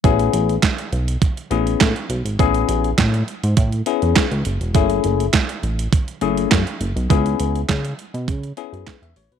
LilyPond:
<<
  \new Staff \with { instrumentName = "Tine electric piano" } { \time 4/4 \key a \major \tempo 4 = 102 <b cis' e' gis'>4 r4. <b cis' e' gis'>8 r4 | <b cis' e' gis'>4 r4. <b cis' e' gis'>8 r4 | <a cis' e' gis'>4 r4. <a cis' e' gis'>8 r4 | <b cis' e' gis'>4 r4. <b cis' e' gis'>8 r16 e''16 cis''16 b'16 | }
  \new Staff \with { instrumentName = "Analog synth bass" } { \clef bass \time 4/4 \key a \major a,,8 a,,8 r8 b,,8 r8 a,,8 a,16 r16 b,,16 gis,,16 | a,,8 a,,8 a,8 r16 gis,16 a,8 r16 e,16 r16 cis,16 fis,,16 e,,16 | fis,,8 fis,,8 r8 a,,8 r8 fis,,8 fis,16 r16 fis,,16 b,,16 | cis,8 cis,8 cis8 r16 b,16 cis8 r16 fis,16 r16 e,16 a,,16 b,,16 | }
  \new DrumStaff \with { instrumentName = "Drums" } \drummode { \time 4/4 <hh bd>16 hh16 hh16 hh16 <hc hh bd sn>16 hh16 hh16 hh16 <hh bd>16 hh16 hh16 hh16 <hc hh bd sn>16 hh16 hh16 hh16 | <hh bd>16 hh16 hh16 hh16 <hc hh bd sn>16 hh16 hh16 hh16 <hh bd>16 hh16 hh16 hh16 <hc hh bd sn>16 hh16 hh16 hh16 | <hh bd>16 hh16 hh16 hh16 <hc hh bd sn>16 hh16 hh16 hh16 <hh bd>16 hh16 hh16 hh16 <hc hh bd sn>16 hh16 hh16 hh16 | <hh bd>16 hh16 hh16 hh16 <hc hh bd sn>16 hh16 hh16 hh16 <hh bd>16 hh16 hh16 hh16 <hc hh bd sn>16 hh16 hho16 hh16 | }
>>